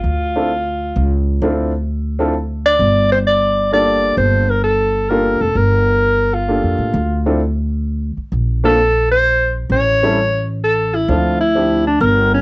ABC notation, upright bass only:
X:1
M:3/4
L:1/8
Q:"Swing" 1/4=130
K:Dm
V:1 name="Upright bass" clef=bass
D,,4 ^C,,2 | D,,6 | G,,,6 | G,,,4- G,,, F,,, |
G,,,4- (3G,,, F,, A,, | D,,4- D,, z | B,,,6 | A,,,6 |
D,,4 G,,,2 |]